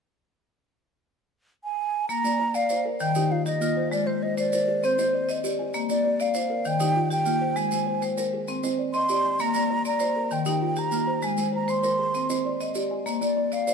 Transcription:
1.64 G#5
2.09 A#3 A#5, maracas
2.24 A#3 D5, maracas
2.40 D5
2.54 D5 F5, maracas
2.69 C5 D5, maracas
2.85 A#4
3.00 D#3 G5, maracas
3.15 D#3 D#4 G4, maracas
3.31 F4 F5
3.46 G4 D#5, maracas
3.61 A#3 F4, maracas
3.77 C5
3.92 G#3 D5, maracas
4.06 G#3 C5
4.22 C5 D#5
4.37 C5 D5, maracas
4.53 A#4 C5, maracas
4.68 G#4
4.83 C4 C5, maracas
4.98 C4 C5 D#5, maracas
5.13 D5
5.29 D#5, maracas
5.44 G4 D5, maracas
5.59 G#5
5.74 A#3, maracas
5.89 A#3 D5, maracas
6.05 D5
6.20 D5 F5, maracas
6.34 C5 D5, maracas
6.50 A#4
6.65 D#3 G5, maracas
6.80 D#3 D#4 G4, maracas
6.96 F4
7.10 G4 G5, maracas
7.26 A#3 F4, maracas
7.41 C5
7.56 G#3 G#5, maracas
7.71 G#3 C5, maracas
7.87 C5
8.02 C5, maracas
8.18 A#4 C5, maracas
8.34 G#4
8.48 C4, maracas
8.63 C4 C5 D#5, maracas
8.79 D5
8.93 D#5 C6, maracas
9.09 G4 D5, maracas
9.25 G#5
9.39 A#3 A#5, maracas
9.54 A#3 D5, maracas
9.71 D5
9.85 D5 A#5, maracas
9.99 C5 D5, maracas
10.16 A#4
10.31 D#3 G5, maracas
10.46 D#3 D#4 G4, maracas
10.62 F4
10.76 G4 A#5, maracas
10.92 A#3 F4, maracas
11.07 C5
11.22 G#3 G#5, maracas
11.37 G#3 C5, maracas
11.53 C5 A#5
11.68 C5 C6, maracas
11.83 A#4 C5, maracas
11.99 G#4
12.14 C4, maracas
12.30 C4 C5 D#5, maracas
12.45 D5
12.60 D#5, maracas
12.75 G4 D5, maracas
12.91 G#5
13.06 A#3, maracas
13.21 A#3 D5, maracas
13.37 D5
13.52 D5 F5, maracas
13.67 C5 D5, maracas

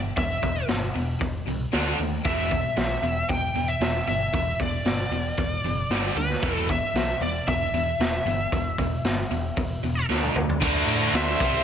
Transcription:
Already playing: E2 B2
0.16 E1 E2 B2 E5, kick, open hi-hat
0.42 E1 E2 B2, kick, open hi-hat
0.68 G1 E2 B2, snare, open hi-hat
0.94 E1 E2 B2, open hi-hat
1.19 E1 E2 B2, kick, open hi-hat
1.46 C2 E2 B2, open hi-hat
1.72 D2 D3 A3 D4, snare, open hi-hat
1.98 D#2 D3 A3, open hi-hat
2.24 E1 E2 B2 E3 E5, kick, open hi-hat
2.50 E2 B2, kick, open hi-hat
2.76 B1 E2 B2, snare, open hi-hat
3.03 E1 E2 B2, open hi-hat
3.29 E1 E2 B2 G5, kick, open hi-hat
3.54 E2 B2, open hi-hat
3.68 E5
3.80 E1 E2 B2, snare, open hi-hat
4.07 G1 E2 B2 E5, open hi-hat
4.33 E1 E2 B2 E5, kick, open hi-hat
4.60 E1 E2 B2 D5, kick, open hi-hat
4.85 G1 E2 B2, snare, open hi-hat
5.11 E1 E2 B2, open hi-hat
5.37 E1 E2 B2, kick, open hi-hat
5.64 F#1 E2 B2, open hi-hat
5.90 G1 G2 D3 G3, snare, open hi-hat
6.15 D2 G2 D3 B4, open hi-hat
6.30 snare
6.43 E1 E2 B2 E3, kick, open hi-hat
6.68 E2 B2 E5, kick, open hi-hat
6.94 B1 E2 B2, snare, open hi-hat
7.21 E1 E2 B2 D5, open hi-hat
7.47 E1 E2 B2 E5, kick, open hi-hat
7.72 E2 B2, open hi-hat
7.99 E1 E2 B2, snare, open hi-hat
8.25 G1 E2 B2, open hi-hat
8.52 E1 E2 B2, kick, open hi-hat
8.78 E1 E2 B2, kick, open hi-hat
9.05 G1 E2 B2, snare, open hi-hat
9.31 E1 E2 B2, open hi-hat
9.56 E1 E2 B2, kick, open hi-hat
9.83 E1 E2 B2, open hi-hat
10.09 D2 D3 A3 D4, snare
10.23 high tom
10.35 D2 D3 A3, mid tom
10.49 floor tom
10.60 D2 D3 A3 D4, kick, crash
10.87 A2, ride
11.13 D2 D3 A3 D4 C5 E5, snare, ride
11.38 C2 C3 G3 C4, kick, ride

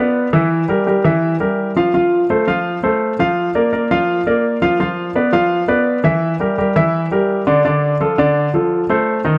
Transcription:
Already playing: B3 B4 D5
0.33 E3 E4 E5
0.68 G3 G4 A#4
0.87 G3 G4 A#4
1.04 E3 E4 E5
1.40 G3 G4 A#4
1.76 F3 F4 F5
1.94 F3 F4 F5
2.30 A3 A4 C5
2.47 F3 F4 F5
2.83 A3 A4 C5
3.19 F3 F4 F5
3.55 A#3 A#4 D5
3.73 A#3 A#4 D5
3.91 F3 F4 F5
4.26 A#3 A#4 D5
4.62 F3 F4 F5
4.80 F3 F4 F5
5.15 B3 B4 D5
5.32 F3 F4 F5
5.68 B3 B4 D5
6.04 E3 E4 E5
6.40 G3 G4 A#4
6.58 G3 G4 A#4
6.76 E3 E4 E5
7.11 G3 G4 A#4
7.47 D3 D4 D5
7.65 D3 D4 D5
8.00 F3 F4 A4
8.18 D3 D4 D5
8.54 F3 F4 A4
8.89 A3 A4 C5
9.25 D#3 D#4 D#5

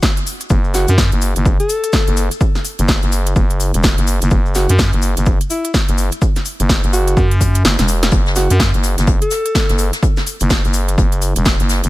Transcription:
0.02 kick, snare, cabasa
0.17 closed hi-hat, cabasa
0.27 open hi-hat, cabasa
0.40 closed hi-hat, cabasa
0.50 F#1, kick, cabasa
0.64 cabasa
0.74 F#4, snare, open hi-hat, cabasa
0.88 F#2, closed hi-hat, cabasa
0.98 kick, snare, cabasa
1.12 F#1, closed hi-hat, cabasa
1.22 open hi-hat, cabasa
1.36 F#1, closed hi-hat, cabasa
1.45 kick, cabasa
1.60 A4, closed hi-hat, cabasa
1.69 open hi-hat, cabasa
1.84 closed hi-hat, cabasa
1.93 kick, snare, cabasa
2.07 F#1, closed hi-hat, cabasa
2.17 open hi-hat, cabasa
2.31 closed hi-hat, cabasa
2.41 kick, cabasa
2.55 snare, cabasa
2.65 open hi-hat, cabasa
2.79 F#1, closed hi-hat, cabasa
2.88 kick, snare, cabasa
3.02 F#1, closed hi-hat, cabasa
3.12 open hi-hat, cabasa
3.26 closed hi-hat, cabasa
3.36 F#1, kick, cabasa
3.50 closed hi-hat, cabasa
3.60 open hi-hat, cabasa
3.74 E1, closed hi-hat, cabasa
3.83 kick, snare, cabasa
3.98 F#1, closed hi-hat, cabasa
4.07 open hi-hat, cabasa
4.22 F#1, closed hi-hat, cabasa
4.31 F#1, kick, cabasa
4.46 cabasa
4.55 F#4, snare, open hi-hat, cabasa
4.69 F#2, closed hi-hat, cabasa
4.79 kick, snare, cabasa
4.93 F#1, closed hi-hat, cabasa
5.02 open hi-hat, cabasa
5.17 F#1, closed hi-hat, cabasa
5.26 kick, cabasa
5.41 closed hi-hat, cabasa
5.50 E4, open hi-hat, cabasa
5.65 closed hi-hat, cabasa
5.74 kick, snare, cabasa
5.88 F#1, closed hi-hat, cabasa
5.98 open hi-hat, cabasa
6.12 closed hi-hat, cabasa
6.22 kick, cabasa
6.36 snare, closed hi-hat, cabasa
6.45 open hi-hat, cabasa
6.60 F#1, closed hi-hat, cabasa
6.69 kick, snare, cabasa
6.84 F#1, closed hi-hat, cabasa
6.93 F#4, open hi-hat, cabasa
7.08 closed hi-hat, cabasa
7.17 F#2, kick, cabasa
7.31 closed hi-hat, cabasa
7.41 kick, open hi-hat, cabasa
7.55 closed hi-hat, cabasa
7.65 F#1, snare, cabasa
7.79 E1, snare, closed hi-hat, cabasa
7.88 open hi-hat, cabasa
8.03 snare, closed hi-hat, cabasa
8.11 F#1, kick, closed hi-hat, cabasa
8.26 snare, cabasa
8.36 F#4, snare, closed hi-hat, open hi-hat, cabasa
8.50 F#2, closed hi-hat, cabasa
8.59 kick, snare, closed hi-hat, cabasa
8.74 F#1, closed hi-hat, cabasa
8.83 snare, closed hi-hat, open hi-hat, cabasa
8.98 F#1, snare, closed hi-hat, cabasa
9.07 kick, closed hi-hat, cabasa
9.21 A4, closed hi-hat, cabasa
9.31 snare, closed hi-hat, open hi-hat, cabasa
9.46 closed hi-hat, cabasa
9.55 kick, snare, closed hi-hat, cabasa
9.69 F#1, snare, closed hi-hat, cabasa
9.78 closed hi-hat, open hi-hat, cabasa
9.93 snare, closed hi-hat, cabasa
10.03 kick, closed hi-hat, cabasa
10.17 snare, cabasa
10.27 closed hi-hat, open hi-hat, cabasa
10.40 F#1, closed hi-hat, cabasa
10.50 kick, snare, closed hi-hat, cabasa
10.65 F#1, closed hi-hat, cabasa
10.73 closed hi-hat, open hi-hat, cabasa
10.88 closed hi-hat, cabasa
10.98 F#1, kick, closed hi-hat, cabasa
11.12 closed hi-hat, cabasa
11.22 closed hi-hat, open hi-hat, cabasa
11.36 E1, closed hi-hat, cabasa
11.45 kick, snare, closed hi-hat, cabasa
11.60 F#1, closed hi-hat, cabasa
11.69 snare, closed hi-hat, open hi-hat, cabasa
11.84 F#1, closed hi-hat, cabasa

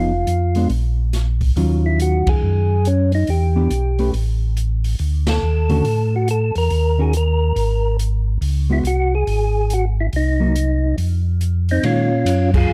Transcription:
Already playing: F1 F3 B3 D#4 F4 G#4
0.27 F2, closed hi-hat
0.55 G#3 B3 D4, open hi-hat
0.69 A#1, open hi-hat
1.13 snare, closed hi-hat
1.41 kick, open hi-hat
1.56 D#2 D#3 F#3 C#4 F4, open hi-hat
1.86 E4
2.00 F#4, closed hi-hat
2.27 D#2 G#4, kick, ride
2.43 F#2
2.85 C#4, closed hi-hat
3.12 D#4, open hi-hat
3.27 E2 G4, open hi-hat
3.56 E3 B3 D4 G4
3.71 B1, closed hi-hat
3.99 A3 C#4 G4 B4, open hi-hat
4.13 A1, open hi-hat
4.57 closed hi-hat
4.84 open hi-hat
4.99 D2, open hi-hat
5.27 A4, snare, ride
5.42 D#2
5.69 D3 A3 C#4 F#4 A4, open hi-hat
5.85 A2, open hi-hat
6.16 F#4
6.28 A4, closed hi-hat
6.55 E2 A#4, open hi-hat
6.70 D#2, open hi-hat
6.98 D#3 C#4 F#4 G#4 A#4
7.13 A#4, closed hi-hat
7.56 G#1, open hi-hat
7.99 closed hi-hat
8.41 C#2, open hi-hat
8.70 G#3 B3 E4 F#4
8.84 C2 F#4, closed hi-hat
9.15 G#4
9.27 G#1, open hi-hat
9.70 F#4, closed hi-hat
10.01 E4
10.13 C2 D#4, open hi-hat
10.40 F#3 A#3 D#4
10.56 closed hi-hat
10.98 F2, open hi-hat
11.41 closed hi-hat
11.69 C4 D#4, open hi-hat
11.83 A#2 D#3 G#3 C#4 F4, ride
12.25 F#2, hi-hat pedal, ride
12.54 F4 G#4, kick, crash
12.69 F2

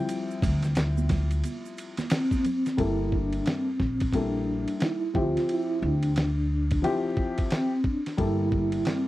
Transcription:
Already playing: F3 G3 C4 E4 G5
0.09 ride, shaker
0.31 shaker
0.42 D2, kick, ride, low conga, shaker
0.63 snare, ride, shaker
0.75 snare, hi-hat pedal, ride, shaker
0.98 high conga, shaker
1.09 kick, snare, ride, high conga, low conga, shaker
1.31 ride, shaker
1.44 ride, high conga, shaker
1.65 shaker
1.78 ride, shaker
1.97 snare, ride, high conga, shaker
2.10 C4, snare, hi-hat pedal, ride, shaker
2.31 kick, high conga, shaker
2.45 ride, low conga, shaker
2.66 snare, ride, shaker
2.77 G1 G3 A#3 E4 A4, kick, ride
3.12 D4, kick
3.32 ride
3.46 C4, snare, hi-hat pedal, ride
3.80 A#1, kick, snare
4.00 kick, ride
4.13 G3 A#3 D4 E4 A4, kick, ride
4.68 ride
4.77 D#4, hi-hat pedal, ride
4.82 E4, snare
5.13 D2 F3 C4 F4 G4 E5, kick
5.37 snare, ride
5.49 E4, ride
5.82 D2 D4
6.03 ride
6.16 snare, hi-hat pedal, ride
6.71 kick, ride
6.82 F3 C4 E4 G4, ride
7.17 kick
7.38 kick, ride
7.51 C4, snare, hi-hat pedal, ride
7.84 D4, kick
8.06 snare, ride
8.17 G1 G3 A#3 E4 A4, kick, ride
8.52 kick
8.72 ride
8.85 C4, snare, hi-hat pedal, ride

